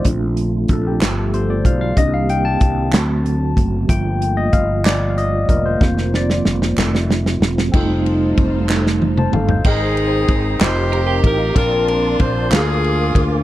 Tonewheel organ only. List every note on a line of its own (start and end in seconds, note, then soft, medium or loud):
0.00 1.94 F3 medium
0.00 0.99 A3 medium
0.05 1.95 D3 medium
0.05 1.00 D4 medium
0.05 1.95 F4 medium
1.00 2.91 G3 medium
1.00 1.96 B3 medium
1.96 2.92 D#3 medium
1.96 2.92 A#3 medium
1.96 3.87 C4 medium
1.96 2.92 G4 medium
2.92 5.78 D3 medium
2.92 3.89 F#3 medium
2.92 3.88 A3 medium
2.92 3.88 F#4 medium
3.88 5.79 F3 medium
3.88 5.79 G3 medium
3.88 7.69 F4 medium
5.80 7.71 D#3 medium
5.80 7.71 F3 medium
5.80 6.76 A#3 medium
5.80 6.76 C4 medium
6.78 7.72 A3 medium
6.78 7.73 C4 medium
7.73 9.61 G3 medium
7.73 9.61 A3 medium
7.73 9.61 D#4 medium
9.65 10.60 G#4 medium
9.65 10.60 C5 medium
9.65 10.60 G5 medium
9.65 11.55 A#5 medium
10.60 11.55 G4 medium
10.60 11.55 D#5 medium
10.60 11.55 F5 medium
11.54 13.43 A#4 medium
11.54 12.50 D5 medium
11.54 12.50 A5 medium
11.54 12.50 C6 medium
12.50 13.43 F5 medium
12.50 13.43 G#5 medium
12.50 13.43 D6 medium